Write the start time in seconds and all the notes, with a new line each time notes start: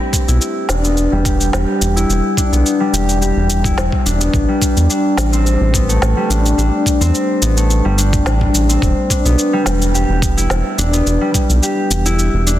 Already playing: A3 C4 D4 G4
0.13 kick, cabasa
0.28 B1 E4, cabasa
0.41 cabasa
0.69 E1 D4, snare, cabasa
0.84 B3, cabasa
0.97 cabasa
1.12 E1 G3
1.25 G4, kick, cabasa
1.41 cabasa
1.53 E1 G4, snare, cabasa
1.81 E1, cabasa
1.96 E4, cabasa
2.09 E1, cabasa
2.37 D4, kick, cabasa
2.52 B1 B3, cabasa
2.66 cabasa
2.80 G3
2.93 E1 G4, cabasa
3.09 cabasa
3.21 G4, cabasa
3.36 E1
3.50 cabasa
3.64 E4, kick, cabasa
3.77 E1, snare, cabasa
3.92 kick
4.05 E1 D4, cabasa
4.20 B3, cabasa
4.34 A1, kick, cabasa
4.48 G3
4.62 D4, kick, cabasa
4.76 E2, cabasa
4.90 D4, cabasa
5.17 A1, snare, cabasa
5.33 C4, cabasa
5.47 cabasa
5.61 A1
5.74 B3, kick, cabasa
5.89 A3, cabasa
6.02 A1, snare, cabasa
6.17 G3
6.30 A1 D4, cabasa
6.46 cabasa
6.58 A1 D4, cabasa
6.86 kick, cabasa
7.01 E2 C4, cabasa
7.15 cabasa
7.42 A1 B3, cabasa
7.57 A3, cabasa
7.70 cabasa
7.85 G1 G3
7.98 D4, cabasa
8.13 kick, cabasa
8.26 A1 D4, snare, cabasa
8.41 kick
8.54 A1, cabasa
8.69 C4, cabasa
8.82 E1, kick, cabasa
9.10 D4, kick, cabasa
9.25 B1 B3, cabasa
9.39 cabasa
9.53 G3
9.66 E1 G3, snare, cabasa
9.82 cabasa
9.94 G4, cabasa
10.09 E1
10.22 kick, cabasa
10.37 E4, cabasa
10.50 E1, snare, cabasa
10.78 E1 D4, cabasa
10.93 B3, cabasa
11.06 E1, cabasa
11.21 G3
11.34 G3, kick, cabasa
11.49 B1, cabasa
11.62 G4, cabasa
11.90 E1, cabasa
12.06 E4, cabasa
12.19 cabasa
12.34 E1
12.47 D4, cabasa